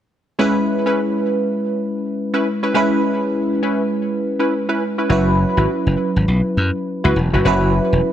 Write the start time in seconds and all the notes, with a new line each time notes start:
0.39 G#3 C#4 E4 B4
0.86 C#4 E4 B4
2.34 C#4 E4 B4
2.63 C#4 E4 B4
2.74 G#3 C#4 E4 B4
3.63 C#4 E4 B4
4.39 C#4 E4 B4
4.69 C#4 E4 B4
4.98 C#4 E4 B4
5.09 F#1 F#3 C#4 E4 F#4 B4
5.57 G#1 E4 F#4 B4
5.87 F#1
6.16 G#1
6.28 B1
6.57 F#2
7.04 C#2 E4 F#4 B4
7.16 E1
7.33 F1 E4 F#4 B4
7.45 F#1 F#3 C#4 E4 F#4 B4
7.93 E1